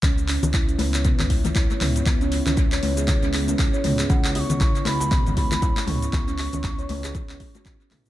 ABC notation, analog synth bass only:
X:1
M:4/4
L:1/16
Q:"Swing 16ths" 1/4=118
K:C#m
V:1 name="Analog synth bass" clef=bass
C,,3 C,,3 C,,3 C,,3 C,, z C,, z | C,,3 C,,3 C,,3 C,,3 C,, z C,, z | C,,3 C,,3 C,,3 C,,3 C,, z C,, z | C,,3 C,,3 C,,3 C,, z2 C,, z B,,, z |]